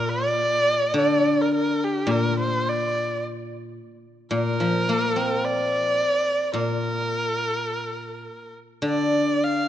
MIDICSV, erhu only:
0, 0, Header, 1, 2, 480
1, 0, Start_track
1, 0, Tempo, 568182
1, 1776, Time_signature, 4, 2, 24, 8
1, 2728, Tempo, 554529
1, 6088, Tempo, 579710
1, 8217, End_track
2, 0, Start_track
2, 0, Title_t, "Erhu"
2, 0, Program_c, 0, 110
2, 0, Note_on_c, 0, 70, 78
2, 84, Note_on_c, 0, 74, 90
2, 97, Note_off_c, 0, 70, 0
2, 821, Note_off_c, 0, 74, 0
2, 824, Note_on_c, 0, 74, 71
2, 1196, Note_on_c, 0, 70, 67
2, 1209, Note_off_c, 0, 74, 0
2, 1304, Note_off_c, 0, 70, 0
2, 1309, Note_on_c, 0, 70, 70
2, 1557, Note_on_c, 0, 67, 69
2, 1570, Note_off_c, 0, 70, 0
2, 1785, Note_on_c, 0, 70, 73
2, 1798, Note_off_c, 0, 67, 0
2, 2018, Note_off_c, 0, 70, 0
2, 2026, Note_on_c, 0, 72, 70
2, 2276, Note_on_c, 0, 74, 73
2, 2289, Note_off_c, 0, 72, 0
2, 2740, Note_off_c, 0, 74, 0
2, 3688, Note_on_c, 0, 70, 78
2, 4644, Note_on_c, 0, 74, 85
2, 4657, Note_off_c, 0, 70, 0
2, 5605, Note_off_c, 0, 74, 0
2, 5627, Note_on_c, 0, 70, 68
2, 7256, Note_off_c, 0, 70, 0
2, 7537, Note_on_c, 0, 74, 80
2, 8019, Note_on_c, 0, 77, 84
2, 8031, Note_off_c, 0, 74, 0
2, 8217, Note_off_c, 0, 77, 0
2, 8217, End_track
0, 0, End_of_file